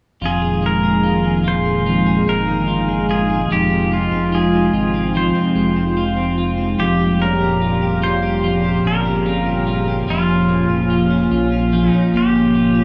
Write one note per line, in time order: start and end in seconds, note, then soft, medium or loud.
0.21 2.23 F1 medium
0.21 1.85 F2 medium
0.21 3.47 A#2 medium
0.21 3.47 D#3 medium
0.21 6.75 G#3 medium
0.21 6.76 D#4 medium
0.21 1.03 F4 medium
0.21 3.47 G#4 medium
0.26 0.66 G#4 medium
0.42 0.83 G#4 soft
0.62 2.27 G#3 medium
0.62 1.47 A#4 medium
0.83 1.24 G#4 soft
1.03 1.44 F4 medium
1.24 1.65 G#4 soft
1.44 1.86 F4 medium
1.44 2.29 C5 medium
1.65 2.06 G#4 soft
1.86 3.49 F2 medium
1.86 2.67 F4 medium
2.07 2.47 G#4 soft
2.27 3.46 G1 medium
2.27 3.91 G#3 soft
2.27 3.13 A#4 medium
2.48 2.88 G#4 soft
2.68 3.09 F4 medium
2.89 3.29 G#4 soft
3.09 3.50 F4 medium
3.09 3.52 G#4 medium
3.30 3.70 G#4 soft
3.50 4.09 F1 medium
3.50 5.13 F2 medium
3.50 6.76 C3 medium
3.50 6.76 F3 medium
3.50 6.76 F4 medium
3.50 4.31 F4 medium
3.50 3.94 G4 medium
3.70 4.11 C4 soft
3.92 5.54 G#3 medium
3.92 4.31 F4 medium
4.12 4.70 F1 medium
4.12 4.52 C4 soft
4.32 4.72 F4 medium
4.32 5.18 G#4 medium
4.53 4.93 C4 soft
4.73 5.32 G#1 medium
4.73 5.14 F4 medium
4.94 5.33 C4 soft
5.14 6.77 F2 medium
5.14 5.96 F4 medium
5.14 6.35 C5 medium
5.35 5.75 C4 soft
5.55 6.75 F1 medium
5.55 6.87 G#3 soft
5.76 6.15 C4 soft
5.97 6.37 F4 medium
6.17 6.57 C4 soft
6.38 6.78 F4 medium
6.58 6.87 C4 soft
6.78 8.80 F1 loud
6.78 8.42 F2 medium
6.78 12.84 A#2 medium
6.78 12.84 C#3 medium
6.78 10.04 G3 medium
6.78 12.84 C#4 medium
6.78 7.61 F4 medium
6.78 10.04 G4 medium
6.78 7.22 G4 medium
6.99 7.40 G4 soft
7.20 8.84 C#4 soft
7.20 7.99 A#4 medium
7.41 7.81 G4 medium
7.62 8.02 F4 medium
7.82 8.21 G4 medium
8.02 8.43 F4 medium
8.02 8.87 C5 medium
8.23 8.63 G4 medium
8.43 10.16 F2 medium
8.43 9.26 F4 medium
8.64 9.04 G4 soft
8.84 10.04 G1 medium
8.84 10.28 C#4 soft
8.84 10.05 A#4 medium
9.06 9.45 G4 medium
9.26 9.66 F4 medium
9.46 9.87 G4 soft
9.67 10.08 F4 medium
9.88 10.16 G4 soft
10.08 10.67 F1 loud
10.08 12.84 F3 medium
10.08 11.71 F3 medium
10.08 12.84 F4 medium
10.08 10.89 F4 medium
10.08 11.90 F4 medium
10.28 10.68 C#4 soft
10.49 12.13 A#3 medium
10.69 11.28 F1 medium
10.69 11.09 C#4 soft
10.90 11.30 F4 medium
11.10 11.51 C#4 soft
11.31 11.90 A#1 medium
11.31 11.72 F4 medium
11.52 11.92 C#4 soft
11.73 12.84 F3 medium
11.73 12.54 F4 medium
11.90 12.34 C#4 soft
11.90 12.84 D#4 medium
12.13 12.84 G1 medium
12.13 12.84 A#3 medium
12.13 12.84 G4 medium
12.35 12.74 C#4 soft
12.55 12.84 F4 medium
12.75 12.84 C#4 soft